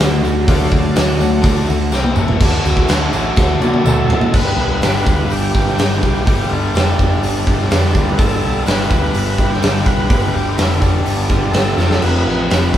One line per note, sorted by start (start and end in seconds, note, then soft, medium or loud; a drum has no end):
0.00 0.22 D2 medium
0.00 0.21 D3 medium
0.00 0.46 D3 medium
0.00 0.21 A3 medium
0.00 0.48 A3 medium
0.00 0.48 D4 medium
0.00 0.49 F#4 medium
0.00 snare loud
0.00 open hi-hat medium
0.00 tambourine loud
0.23 0.47 D2 loud
0.23 0.46 D3 medium
0.23 0.46 A3 medium
0.23 tambourine medium
0.44 1.67 D3 medium
0.44 1.44 F#3 medium
0.44 0.70 D5 medium
0.44 0.47 E5 medium
0.48 0.71 D2 loud
0.48 0.71 D3 loud
0.48 1.45 A3 medium
0.48 1.68 A3 loud
0.48 0.72 A3 loud
0.48 1.45 D4 medium
0.48 0.72 D4 loud
0.48 1.68 D4 loud
0.48 1.67 F#4 loud
0.48 0.72 F5 loud
0.48 kick loud
0.48 open hi-hat medium
0.48 tambourine soft
0.72 0.95 D2 loud
0.72 0.94 D3 medium
0.72 0.94 A3 medium
0.72 0.95 D5 medium
0.72 0.96 F5 medium
0.72 kick medium
0.72 tambourine soft
0.96 1.19 D2 loud
0.96 1.18 D3 medium
0.96 1.18 A3 loud
0.96 1.43 F#5 loud
0.96 snare loud
0.96 open hi-hat medium
0.96 tambourine loud
1.20 1.43 D2 loud
1.20 1.40 D3 medium
1.20 1.42 A3 medium
1.20 tambourine medium
1.42 1.68 D2 loud
1.42 1.66 D3 loud
1.42 1.67 F#3 medium
1.42 1.66 A3 loud
1.42 1.67 D4 loud
1.42 kick loud
1.42 open hi-hat medium
1.42 tambourine medium
1.46 1.68 A3 soft
1.46 1.67 D4 medium
1.67 1.92 D2 medium
1.67 1.90 D3 medium
1.67 1.90 A3 medium
1.67 1.93 A3 medium
1.67 1.92 D4 medium
1.67 1.91 F#4 medium
1.67 tambourine medium
1.72 1.93 D3 medium
1.92 2.16 C2 loud
1.92 2.15 C3 loud
1.92 2.15 G3 loud
1.92 2.16 C4 loud
1.92 snare medium
1.92 tambourine loud
2.04 high tom medium
2.16 2.40 A1 loud
2.16 2.39 A2 loud
2.16 2.39 E3 loud
2.16 2.40 A3 loud
2.16 mid tom loud
2.16 tambourine medium
2.28 floor tom loud
2.39 2.57 D2 loud
2.39 2.86 D3 medium
2.39 2.88 D3 medium
2.39 2.66 F#3 loud
2.39 2.89 F#3 medium
2.39 2.65 A3 loud
2.39 2.68 A3 loud
2.39 4.32 D4 medium
2.39 2.63 D4 loud
2.39 4.33 F#4 medium
2.39 4.32 A4 medium
2.39 kick loud
2.39 crash loud
2.39 tambourine soft
2.39 crash medium
2.44 2.67 D4 loud
2.44 2.65 F#4 loud
2.64 2.82 D2 medium
2.64 2.88 F#3 medium
2.64 2.88 A3 medium
2.64 2.89 D4 medium
2.64 2.90 D4 medium
2.64 2.91 F#4 medium
2.64 tambourine medium
2.64 crash medium
2.69 2.89 A3 medium
2.77 kick medium
2.87 3.06 D2 loud
2.87 3.35 D3 medium
2.87 3.38 D3 medium
2.87 3.14 F#3 loud
2.87 3.38 F#3 medium
2.87 3.13 A3 loud
2.87 3.16 A3 loud
2.87 3.11 D4 loud
2.87 3.14 D4 loud
2.87 snare loud
2.87 tambourine loud
2.87 crash medium
2.92 3.12 F#4 loud
3.13 3.30 A1 medium
3.13 3.36 F#3 medium
3.13 3.37 A3 medium
3.13 3.37 D4 medium
3.13 3.61 D4 medium
3.13 3.59 F#4 medium
3.13 tambourine medium
3.13 crash medium
3.17 3.63 A3 medium
3.36 3.54 D2 loud
3.36 3.63 D3 medium
3.36 3.62 F#3 medium
3.36 3.61 A3 medium
3.36 3.60 D4 medium
3.36 kick loud
3.36 snare medium
3.36 tambourine medium
3.60 3.77 C3 medium
3.60 3.86 D3 medium
3.60 3.87 F#3 medium
3.60 3.87 A3 medium
3.60 3.84 D4 loud
3.60 3.88 D4 loud
3.60 3.87 D4 medium
3.60 3.88 F#4 medium
3.60 high tom medium
3.60 tambourine medium
3.64 3.86 A3 medium
3.74 high tom medium
3.85 4.02 D2 medium
3.85 4.33 D3 medium
3.85 4.32 F#3 medium
3.85 4.11 F#3 medium
3.85 4.33 A3 medium
3.85 4.10 A3 medium
3.85 4.34 D4 medium
3.85 4.35 A4 loud
3.85 mid tom loud
3.85 tambourine loud
3.89 4.08 D4 medium
3.89 4.34 F#4 loud
4.08 4.25 A2 medium
4.08 4.33 A3 medium
4.08 4.32 D4 medium
4.08 floor tom loud
4.12 4.34 F#3 medium
4.21 floor tom loud
4.33 4.55 G1 medium
4.33 6.24 G2 medium
4.33 6.25 D3 medium
4.33 4.81 G3 medium
4.33 6.27 G3 loud
4.33 4.61 B3 medium
4.33 8.15 D4 medium
4.33 4.59 D4 loud
4.33 8.16 G4 medium
4.33 4.58 G4 loud
4.33 4.81 B4 loud
4.33 8.16 B4 medium
4.33 kick loud
4.33 crash loud
4.33 tambourine soft
4.57 4.78 B1 medium
4.57 4.83 D4 medium
4.57 4.84 G4 medium
4.57 tambourine soft
4.62 4.82 B3 medium
4.80 5.02 G1 loud
4.80 5.78 G3 loud
4.80 5.58 B3 medium
4.80 5.55 D4 loud
4.80 5.32 B4 loud
4.80 snare loud
4.80 open hi-hat medium
4.80 tambourine medium
4.85 5.54 G4 loud
5.06 5.27 D2 medium
5.06 kick medium
5.06 tambourine medium
5.28 5.50 G1 medium
5.28 6.01 G4 loud
5.28 open hi-hat medium
5.28 tambourine medium
5.54 5.75 G1 medium
5.54 5.80 B3 medium
5.54 5.81 D4 medium
5.54 5.82 G4 medium
5.54 kick medium
5.54 tambourine medium
5.68 snare soft
5.78 5.99 G1 medium
5.78 6.26 G3 medium
5.78 6.07 B3 medium
5.78 6.05 D4 medium
5.78 6.03 G4 medium
5.78 snare loud
5.78 open hi-hat medium
5.78 tambourine medium
6.02 6.23 B1 medium
6.02 6.28 D4 medium
6.02 6.25 G4 medium
6.02 6.29 G4 medium
6.02 kick medium
6.02 tambourine medium
6.07 6.27 B3 medium
6.24 6.47 G1 loud
6.24 8.17 G2 medium
6.24 8.17 D3 loud
6.24 6.74 G3 medium
6.24 8.20 G3 loud
6.24 6.54 B3 medium
6.24 6.51 G4 loud
6.24 kick loud
6.24 open hi-hat medium
6.24 tambourine soft
6.28 6.53 D4 loud
6.28 6.50 G4 loud
6.50 6.71 G1 medium
6.50 7.46 D4 medium
6.50 6.76 D4 medium
6.50 6.77 G4 medium
6.50 tambourine soft
6.54 6.75 B3 medium
6.74 6.95 F1 loud
6.74 7.71 G3 medium
6.74 7.49 B3 medium
6.74 7.48 D4 loud
6.74 7.46 G4 loud
6.74 snare loud
6.74 open hi-hat medium
6.74 tambourine medium
6.99 7.19 F1 medium
6.99 kick medium
6.99 tambourine medium
7.22 7.42 G1 medium
7.22 open hi-hat medium
7.22 tambourine medium
7.47 7.68 G1 medium
7.47 7.72 B3 medium
7.47 8.14 D4 loud
7.47 7.73 D4 medium
7.47 7.74 G4 medium
7.47 kick medium
7.47 tambourine medium
7.60 snare soft
7.71 7.91 F2 medium
7.71 8.18 G3 medium
7.71 7.98 B3 medium
7.71 7.96 D4 medium
7.71 snare loud
7.71 open hi-hat medium
7.71 tambourine medium
7.75 7.94 G4 medium
7.94 8.15 D2 loud
7.94 8.19 B3 medium
7.94 8.21 D4 medium
7.94 8.21 G4 medium
7.94 kick medium
7.94 tambourine medium
8.12 8.19 B4 medium
8.18 8.39 G1 loud
8.18 10.07 G2 medium
8.18 10.09 D3 loud
8.18 8.65 G3 medium
8.18 10.10 G3 loud
8.18 8.45 B3 loud
8.18 8.43 D4 loud
8.18 11.76 G4 medium
8.18 8.41 G4 loud
8.18 8.63 A4 loud
8.18 11.76 B4 medium
8.18 11.76 D5 medium
8.18 kick loud
8.18 open hi-hat medium
8.18 tambourine soft
8.42 8.63 B1 loud
8.42 8.67 B3 medium
8.42 8.68 D4 medium
8.42 8.69 G4 medium
8.66 8.87 G1 loud
8.66 9.60 G3 loud
8.66 9.40 B3 medium
8.66 9.39 D4 loud
8.66 9.37 G4 loud
8.66 8.90 B4 loud
8.66 snare loud
8.66 open hi-hat medium
8.66 tambourine medium
8.91 9.11 D2 medium
8.91 9.53 B4 loud
8.91 kick medium
8.91 tambourine medium
9.14 9.35 G1 loud
9.14 open hi-hat medium
9.14 tambourine medium
9.38 9.59 G1 medium
9.38 9.61 B3 medium
9.38 9.62 D4 medium
9.38 9.63 G4 medium
9.38 kick medium
9.38 tambourine medium
9.50 9.87 G4 loud
9.50 snare soft
9.61 9.83 G1 medium
9.61 10.08 G3 medium
9.61 9.88 B3 medium
9.61 9.87 D4 medium
9.61 9.85 G4 medium
9.61 snare loud
9.61 open hi-hat medium
9.61 tambourine loud
9.85 10.07 B1 medium
9.85 10.10 B3 medium
9.85 10.11 D4 medium
9.85 10.11 G4 medium
9.85 10.36 B4 loud
9.85 kick medium
9.85 tambourine medium
10.08 10.31 G1 loud
10.08 11.76 G2 loud
10.08 11.77 D3 medium
10.08 10.56 G3 loud
10.08 11.78 G3 loud
10.08 10.35 B3 medium
10.08 10.34 D4 loud
10.08 kick loud
10.08 open hi-hat medium
10.08 tambourine soft
10.13 10.32 G4 loud
10.33 10.55 G1 medium
10.33 10.57 B3 medium
10.33 10.59 D4 medium
10.33 10.60 G4 medium
10.33 10.57 G4 medium
10.33 tambourine soft
10.56 10.79 F1 loud
10.56 11.52 G3 medium
10.56 11.31 B3 medium
10.56 11.30 D4 loud
10.56 10.82 E4 medium
10.56 snare loud
10.56 open hi-hat medium
10.56 tambourine medium
10.61 11.28 G4 loud
10.81 11.02 F1 medium
10.81 11.27 D4 medium
10.81 kick medium
10.81 tambourine medium
11.06 11.27 G1 medium
11.06 open hi-hat medium
11.06 tambourine medium
11.28 11.50 G1 medium
11.28 11.53 B3 medium
11.28 11.54 D4 medium
11.28 11.55 G4 medium
11.28 kick medium
11.28 tambourine medium
11.52 11.74 G1 medium
11.52 11.77 G3 medium
11.52 11.77 B3 medium
11.52 11.78 D4 medium
11.52 12.03 A4 loud
11.52 snare loud
11.52 open hi-hat medium
11.52 tambourine medium
11.56 11.77 G4 medium
11.76 11.98 F1 medium
11.76 12.78 F2 loud
11.76 12.78 C3 loud
11.76 12.78 F3 loud
11.76 12.03 A3 medium
11.76 12.04 C4 medium
11.76 12.78 C4 medium
11.76 12.05 F4 loud
11.76 12.78 F4 medium
11.76 12.78 A4 medium
11.76 snare medium
11.76 tambourine medium
11.81 12.02 F3 medium
11.91 snare medium
12.02 12.23 F1 medium
12.02 12.50 F3 loud
12.02 12.29 A3 medium
12.02 12.27 C4 loud
12.02 12.26 F4 loud
12.02 12.49 B4 loud
12.02 crash loud
12.02 tambourine soft
12.26 12.47 A1 medium
12.26 12.51 A3 medium
12.26 12.52 C4 medium
12.26 12.53 F4 medium
12.26 tambourine soft
12.50 12.70 F1 medium
12.50 12.78 F3 loud
12.50 12.78 A3 medium
12.50 12.78 C4 loud
12.50 12.78 F4 loud
12.50 12.78 B4 medium
12.50 snare loud
12.50 open hi-hat medium
12.50 tambourine medium
12.74 12.78 C2 medium
12.74 kick medium
12.74 tambourine medium